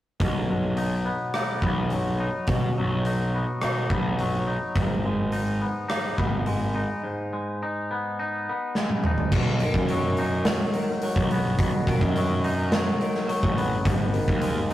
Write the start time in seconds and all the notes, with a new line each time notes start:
0.20 B1 B2, kick, open hi-hat
0.50 F#3
0.77 D#4, open hi-hat
1.05 B3
1.34 D#4, cross-stick, open hi-hat
1.62 B1 B3, kick
1.90 F#3, open hi-hat
2.20 D#4
2.47 B2, kick, open hi-hat
2.78 B1 F#3
3.05 D#4, open hi-hat
3.34 B3
3.61 B2 D#4, cross-stick, open hi-hat
3.90 B1 B3, kick
4.19 F#3, open hi-hat
4.47 D#4
4.75 G#1 G#2, kick, open hi-hat
5.05 G#3
5.32 D#4, open hi-hat
5.62 B3
5.88 D#4, cross-stick, open hi-hat
6.18 G#1 B3, kick
6.46 G#3, open hi-hat
6.75 D#4
7.04 G#2
7.33 G#3
7.63 D#4
7.91 B3
8.19 D#4
8.49 B3
8.75 G#3, snare
8.90 high tom
9.04 D#4, mid tom
9.18 floor tom
9.32 B1 B2, kick, crash
9.60 D#3, open hi-hat
9.74 F#2, kick
9.89 F#3, open hi-hat
10.17 D#4, open hi-hat
10.45 F#3, snare, open hi-hat
10.74 D#3, open hi-hat
11.02 F#3, open hi-hat
11.16 B1, kick
11.31 B1 B3, open hi-hat
11.59 B1 B2, kick, open hi-hat
11.87 B2 D#3, kick, open hi-hat
12.01 F#2, kick
12.16 F#3, open hi-hat
12.44 D#4, open hi-hat
12.72 F#3, snare, open hi-hat
13.01 D#3, open hi-hat
13.15 snare
13.28 F#3, open hi-hat
13.43 A1, kick
13.58 B3, open hi-hat
13.85 G#1 G#2, kick, open hi-hat
14.13 D#3, open hi-hat
14.28 D#2, kick
14.42 G#3, open hi-hat
14.70 open hi-hat